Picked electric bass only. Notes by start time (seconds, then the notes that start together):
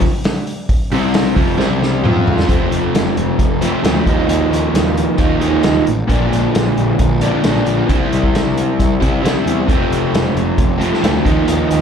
0.91 C2
1.36 F1
1.57 C2
2.03 F2
2.49 F1
2.72 F1
2.95 F1
3.18 F1
3.39 F1
3.84 D2
4.06 D#2
4.29 D#2
4.51 D#2
4.74 D#2
5.19 D#2
5.43 D#2
5.66 D#2
5.88 A1
6.10 A#1
6.33 A#1
6.56 A#1
6.78 A#1
7.00 A#1
7.46 A#1
7.67 A#1
7.89 C2
8.13 C2
8.34 C2
8.79 C2
9.02 C2
9.24 C2
9.46 E2
9.69 F1
9.91 F1
10.13 F1
10.35 F1
10.59 F1
11.04 D2
11.26 D#2
11.48 D#2
11.71 D#2